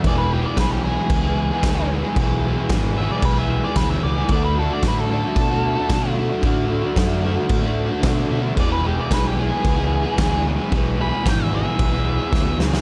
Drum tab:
CC |x---x---x---x---|x---x---x---x---|x---x---x---x---|x---x---x---x---|
SD |----o-------o---|----o-------o---|----o-------o---|----o-------o---|
BD |o---o---o---o---|o---o---o---o---|o---o---o---o---|o---o---o---o---|

CC |x---x---x---x---|x---x---x-------|
SD |----o-------o---|----o-------o-oo|
BD |o---o---o---o---|o---o---o---o---|